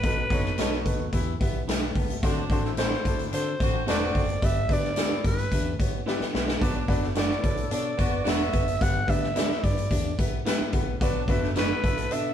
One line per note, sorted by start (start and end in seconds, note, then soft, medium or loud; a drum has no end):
0.00 0.25 B1 loud
0.00 0.82 B2 medium
0.00 0.21 B3 loud
0.00 0.21 D#4 medium
0.00 0.21 F#4 medium
0.00 0.22 A4 medium
0.00 0.83 B4 loud
0.00 kick loud
0.00 closed hi-hat medium
0.04 0.22 B4 loud
0.30 0.52 F#1 loud
0.30 0.49 B3 loud
0.30 0.52 D#4 medium
0.30 0.49 D#4 medium
0.30 0.49 F#4 medium
0.30 0.49 A4 medium
0.30 0.49 C#5 loud
0.30 kick loud
0.30 closed hi-hat medium
0.45 snare soft
0.58 0.90 B1 loud
0.58 0.76 B3 medium
0.58 0.72 B3 medium
0.58 0.76 D#4 medium
0.58 1.10 F#4 medium
0.58 0.72 F#4 medium
0.58 0.76 F#4 medium
0.58 0.77 A4 medium
0.58 0.72 A4 medium
0.58 0.77 C#5 loud
0.58 0.73 D#5 medium
0.58 snare loud
0.58 closed hi-hat medium
0.73 snare soft
0.85 1.03 B3 medium
0.85 1.03 D#4 medium
0.85 1.04 F#4 medium
0.85 1.04 A4 medium
0.85 1.04 B4 medium
0.85 kick loud
0.85 closed hi-hat medium
0.99 1.10 D#2 medium
1.13 1.34 E2 loud
1.13 1.92 E3 medium
1.13 1.31 B3 loud
1.13 1.31 E4 medium
1.13 1.34 E4 loud
1.13 1.31 G4 medium
1.13 1.31 B4 medium
1.13 1.31 E5 loud
1.13 kick medium
1.13 closed hi-hat medium
1.40 1.62 B1 medium
1.40 1.61 B3 medium
1.40 1.59 B3 loud
1.40 1.59 E4 medium
1.40 1.59 G4 medium
1.40 1.59 B4 medium
1.40 1.59 E5 loud
1.40 kick loud
1.40 closed hi-hat medium
1.68 1.89 B1 loud
1.68 1.81 E4 medium
1.68 1.82 G4 medium
1.68 1.82 B4 medium
1.68 1.94 E5 medium
1.68 1.82 E5 medium
1.68 snare loud
1.68 closed hi-hat loud
1.83 2.09 B4 medium
1.83 2.08 G5 medium
1.95 2.17 C#2 loud
1.95 2.16 B3 medium
1.95 2.21 A5 medium
1.95 kick loud
1.95 open hi-hat medium
2.10 2.36 G4 medium
2.10 2.36 E5 medium
2.10 closed hi-hat medium
2.22 2.44 D2 loud
2.22 3.02 D3 medium
2.22 2.61 F#3 loud
2.22 2.61 A3 loud
2.22 2.41 C4 loud
2.22 2.61 D4 loud
2.22 2.41 D4 loud
2.22 2.41 F#4 loud
2.22 2.42 A4 loud
2.22 2.42 C5 loud
2.22 kick loud
2.22 closed hi-hat medium
2.50 2.93 A1 medium
2.50 2.68 C4 loud
2.50 2.71 D4 medium
2.50 2.69 D4 loud
2.50 2.69 F#4 loud
2.50 2.69 A4 loud
2.50 2.69 C5 loud
2.50 kick loud
2.50 closed hi-hat medium
2.64 2.75 A3 medium
2.64 2.75 C4 medium
2.64 2.75 E4 medium
2.64 snare soft
2.77 2.91 C4 medium
2.77 3.00 C4 medium
2.77 2.96 C4 medium
2.77 2.99 D4 medium
2.77 2.96 D4 medium
2.77 3.29 E4 medium
2.77 3.00 F#4 loud
2.77 2.91 F#4 loud
2.77 2.96 F#4 medium
2.77 2.92 A4 medium
2.77 2.96 A4 medium
2.77 3.29 C5 loud
2.77 2.96 C5 medium
2.77 2.92 D5 medium
2.77 snare loud
2.77 closed hi-hat loud
2.93 snare soft
3.05 3.26 D2 medium
3.05 3.23 C4 medium
3.05 3.23 D4 medium
3.05 3.28 D4 medium
3.05 3.23 F#4 medium
3.05 3.28 F#4 medium
3.05 3.28 A4 loud
3.05 3.24 A4 medium
3.05 3.24 C5 medium
3.05 kick loud
3.05 closed hi-hat medium
3.19 closed hi-hat medium
3.32 3.54 D3 loud
3.32 3.50 C4 medium
3.32 3.53 D4 loud
3.32 3.54 D4 medium
3.32 3.51 D4 medium
3.32 3.54 F#4 medium
3.32 3.51 F#4 medium
3.32 3.54 A4 medium
3.32 3.51 A4 medium
3.32 3.84 C5 loud
3.32 3.51 C5 medium
3.32 closed hi-hat medium
3.59 3.82 A1 loud
3.59 3.77 C4 medium
3.59 3.81 C4 medium
3.59 3.82 C4 loud
3.59 3.77 D4 medium
3.59 3.82 D4 loud
3.59 3.77 F#4 medium
3.59 3.82 F#4 loud
3.59 3.78 A4 medium
3.59 3.78 D5 medium
3.59 kick loud
3.59 closed hi-hat medium
3.87 4.09 E1 loud
3.87 4.00 C4 medium
3.87 4.26 C4 loud
3.87 4.05 C4 loud
3.87 4.26 D4 loud
3.87 4.05 D4 loud
3.87 4.26 F#4 loud
3.87 4.01 F#4 loud
3.87 4.05 F#4 medium
3.87 4.01 A4 loud
3.87 4.06 A4 medium
3.87 4.06 B4 loud
3.87 4.01 D5 loud
3.87 4.46 D5 loud
3.87 snare loud
3.87 closed hi-hat loud
4.15 4.36 F#1 medium
4.15 4.35 C4 medium
4.15 4.33 C4 medium
4.15 4.33 D4 medium
4.15 4.33 F#4 medium
4.15 4.33 A4 medium
4.15 4.33 D5 medium
4.15 kick loud
4.15 open hi-hat soft
4.29 closed hi-hat medium
4.42 4.69 G1 loud
4.42 5.21 G2 medium
4.42 4.60 B3 loud
4.42 4.60 D4 loud
4.42 4.60 G4 medium
4.42 4.60 B4 medium
4.42 4.61 D5 loud
4.42 4.74 E5 loud
4.42 kick loud
4.42 closed hi-hat medium
4.69 5.12 D2 medium
4.69 4.87 B3 loud
4.69 4.90 D4 medium
4.69 4.87 D4 medium
4.69 4.88 G4 medium
4.69 4.88 B4 medium
4.69 4.88 D5 loud
4.69 5.26 D5 loud
4.69 kick loud
4.69 closed hi-hat medium
4.84 snare soft
4.96 5.15 B3 medium
4.96 5.10 D4 medium
4.96 5.15 D4 medium
4.96 5.48 E4 medium
4.96 5.11 G4 medium
4.96 5.15 G4 medium
4.96 5.11 B4 medium
4.96 5.15 B4 medium
4.96 5.16 D5 medium
4.96 5.11 D5 medium
4.96 snare loud
4.96 closed hi-hat loud
5.24 5.53 G2 loud
5.24 5.42 B3 medium
5.24 5.42 D4 medium
5.24 5.42 G4 medium
5.24 5.43 B4 medium
5.24 5.77 B4 medium
5.24 5.43 D5 medium
5.24 kick loud
5.24 closed hi-hat medium
5.38 closed hi-hat medium
5.52 5.80 E2 loud
5.52 6.31 E3 medium
5.52 5.70 B3 medium
5.52 5.73 D4 loud
5.52 5.70 E4 medium
5.52 5.70 G4 medium
5.52 5.70 B4 medium
5.52 5.71 E5 medium
5.52 kick medium
5.52 closed hi-hat medium
5.79 6.01 B1 loud
5.79 5.97 B3 medium
5.79 6.00 B3 medium
5.79 5.97 E4 medium
5.79 5.97 G4 medium
5.79 5.97 B4 medium
5.79 5.97 C#5 medium
5.79 kick loud
5.79 closed hi-hat medium
6.06 6.24 B3 loud
6.06 6.20 E4 medium
6.06 6.25 E4 loud
6.06 6.20 G4 medium
6.06 6.25 G4 loud
6.06 6.21 B4 medium
6.06 6.25 B4 loud
6.06 6.25 D5 loud
6.06 6.21 E5 medium
6.06 snare medium
6.20 muted fingered electric bass stroke medium
6.20 snare medium
6.34 6.56 B1 loud
6.34 6.54 B3 medium
6.34 6.52 B3 medium
6.34 6.52 E4 medium
6.34 6.52 G4 medium
6.34 6.52 B4 medium
6.34 6.52 E5 loud
6.34 snare loud
6.48 snare loud
6.60 6.83 B1 loud
6.60 7.40 B2 medium
6.60 7.00 F#3 loud
6.60 6.79 B3 loud
6.60 7.00 B3 loud
6.60 6.79 D4 loud
6.60 7.00 D4 loud
6.60 6.79 F#4 loud
6.60 6.79 B4 loud
6.60 6.80 D5 loud
6.60 kick loud
6.60 closed hi-hat medium
6.88 7.32 F#1 medium
6.88 7.06 B3 loud
6.88 7.07 D4 loud
6.88 7.09 D4 medium
6.88 7.07 F#4 loud
6.88 7.07 B4 loud
6.88 7.07 D5 loud
6.88 kick loud
6.88 closed hi-hat medium
7.02 7.13 A3 medium
7.02 7.13 C#4 medium
7.02 7.13 E4 medium
7.02 snare soft
7.15 7.34 B3 medium
7.15 7.38 B3 medium
7.15 7.29 D4 medium
7.15 7.38 D4 medium
7.15 7.34 D4 medium
7.15 7.68 E4 medium
7.15 7.38 F#4 loud
7.15 7.30 F#4 medium
7.15 7.34 F#4 medium
7.15 7.30 B4 loud
7.15 7.34 B4 medium
7.15 7.30 D5 medium
7.15 7.69 D5 medium
7.15 7.35 E5 medium
7.15 snare loud
7.15 closed hi-hat medium
7.31 snare soft
7.42 7.65 B1 loud
7.42 7.61 B3 medium
7.42 7.61 D4 medium
7.42 7.66 D4 medium
7.42 7.61 F#4 medium
7.42 7.66 F#4 medium
7.42 7.66 A4 loud
7.42 7.62 B4 medium
7.42 7.62 C#5 medium
7.42 kick loud
7.42 closed hi-hat medium
7.57 closed hi-hat medium
7.70 7.93 B2 loud
7.70 7.89 B3 medium
7.70 7.93 D4 medium
7.70 7.89 D4 medium
7.70 7.92 D4 loud
7.70 7.93 F#4 medium
7.70 7.89 F#4 medium
7.70 7.93 A4 loud
7.70 7.89 B4 medium
7.70 7.89 C#5 medium
7.70 8.30 D5 medium
7.70 closed hi-hat loud
7.97 8.20 F#1 medium
7.97 8.20 B3 loud
7.97 8.19 B3 medium
7.97 8.17 B3 medium
7.97 8.20 D4 loud
7.97 8.17 D4 medium
7.97 8.20 F#4 loud
7.97 8.17 F#4 medium
7.97 8.17 B4 medium
7.97 8.17 D5 medium
7.97 kick loud
7.97 closed hi-hat medium
8.24 8.47 E1 loud
8.24 8.64 B3 loud
8.24 8.44 B3 loud
8.24 8.64 D4 loud
8.24 8.39 D4 loud
8.24 8.44 D4 loud
8.24 8.64 F#4 loud
8.24 8.44 F#4 medium
8.24 8.40 F#4 medium
8.24 8.44 B4 medium
8.24 8.40 B4 medium
8.24 8.44 D5 loud
8.24 8.40 D5 loud
8.24 8.83 E5 loud
8.24 snare loud
8.24 closed hi-hat loud
8.52 8.75 F#1 loud
8.52 8.71 B3 medium
8.52 8.74 B3 medium
8.52 8.71 D4 medium
8.52 8.71 F#4 medium
8.52 8.71 B4 medium
8.52 8.72 E5 medium
8.52 kick loud
8.52 closed hi-hat medium
8.68 closed hi-hat medium
8.80 9.03 G1 loud
8.80 9.59 G2 medium
8.80 8.98 B3 loud
8.80 8.99 D4 medium
8.80 8.99 G4 medium
8.80 8.99 B4 loud
8.80 8.99 D5 loud
8.80 9.11 F#5 loud
8.80 kick loud
8.80 closed hi-hat medium
9.07 9.51 D2 loud
9.07 9.26 B3 loud
9.07 9.26 D4 medium
9.07 9.29 D4 medium
9.07 9.26 G4 loud
9.07 9.26 B4 medium
9.07 9.26 D5 loud
9.07 9.65 E5 loud
9.07 kick loud
9.07 closed hi-hat medium
9.23 snare soft
9.34 9.53 B3 medium
9.34 9.53 D4 medium
9.34 9.49 D4 medium
9.34 9.88 E4 medium
9.34 9.53 G4 medium
9.34 9.50 G4 medium
9.34 9.54 B4 medium
9.34 9.50 B4 medium
9.34 9.50 D5 loud
9.34 9.54 E5 medium
9.34 snare loud
9.34 closed hi-hat loud
9.51 snare soft
9.62 9.85 G2 loud
9.62 9.81 B3 medium
9.62 9.81 D4 medium
9.62 9.81 G4 medium
9.62 9.82 B4 medium
9.62 9.82 D5 medium
9.62 10.19 D5 medium
9.62 kick loud
9.62 closed hi-hat medium
9.78 closed hi-hat medium
9.89 10.12 E2 loud
9.89 10.69 E3 medium
9.89 10.08 B3 medium
9.89 10.12 D4 loud
9.89 10.08 E4 medium
9.89 10.09 G4 medium
9.89 10.09 B4 medium
9.89 10.09 E5 medium
9.89 kick loud
9.89 closed hi-hat medium
10.18 10.40 B1 loud
10.18 10.36 B3 medium
10.18 10.39 B3 medium
10.18 10.36 E4 medium
10.18 10.37 G4 medium
10.18 10.37 B4 medium
10.18 10.37 E5 medium
10.18 kick loud
10.18 closed hi-hat medium
10.46 10.64 B3 loud
10.46 10.59 E4 medium
10.46 10.64 E4 loud
10.46 10.60 G4 medium
10.46 10.64 G4 loud
10.46 10.60 B4 loud
10.46 10.64 B4 loud
10.46 10.60 E5 loud
10.46 10.65 E5 loud
10.46 snare loud
10.46 closed hi-hat loud
10.60 muted fingered electric bass stroke soft
10.73 10.95 B1 medium
10.73 10.91 B3 medium
10.73 10.94 B3 medium
10.73 10.92 E4 medium
10.73 10.92 G4 medium
10.73 10.92 B4 medium
10.73 10.92 F#5 loud
10.73 kick loud
10.73 closed hi-hat medium
11.00 11.29 B1 loud
11.00 11.80 B2 medium
11.00 11.40 F#3 loud
11.00 11.40 B3 loud
11.00 11.19 B3 loud
11.00 11.39 D4 loud
11.00 11.19 D4 loud
11.00 11.19 F#4 loud
11.00 11.19 B4 loud
11.00 11.20 D5 loud
11.00 kick loud
11.00 closed hi-hat medium
11.28 11.71 F#1 medium
11.28 11.46 B3 loud
11.28 11.46 D4 loud
11.28 11.49 D4 medium
11.28 11.47 F#4 loud
11.28 11.47 B4 loud
11.28 11.47 E5 loud
11.28 kick loud
11.28 closed hi-hat medium
11.42 11.53 A3 medium
11.42 11.53 C#4 medium
11.42 11.53 E4 medium
11.42 snare soft
11.55 11.78 B3 medium
11.55 11.74 B3 medium
11.55 11.78 D4 medium
11.55 11.69 D4 medium
11.55 11.74 D4 medium
11.55 12.08 E4 medium
11.55 11.78 F#4 loud
11.55 11.70 F#4 medium
11.55 11.74 F#4 medium
11.55 11.70 B4 medium
11.55 11.75 B4 medium
11.55 12.14 B4 loud
11.55 11.70 D5 loud
11.55 11.75 D5 medium
11.55 snare loud
11.55 closed hi-hat medium
11.83 12.05 B1 loud
11.83 12.01 B3 medium
11.83 12.05 D4 medium
11.83 12.02 D4 medium
11.83 12.05 F#4 medium
11.83 12.02 F#4 medium
11.83 12.05 A4 loud
11.83 12.02 B4 medium
11.83 12.02 E5 medium
11.83 kick loud
11.83 closed hi-hat medium
11.98 closed hi-hat medium
12.11 12.33 B2 loud
12.11 12.29 B3 medium
12.11 12.29 D4 medium
12.11 12.33 D4 medium
12.11 12.32 D4 loud
12.11 12.29 F#4 medium
12.11 12.33 F#4 medium
12.11 12.33 A4 loud
12.11 12.29 B4 medium
12.11 12.29 D5 medium
12.11 12.34 E5 loud
12.11 closed hi-hat medium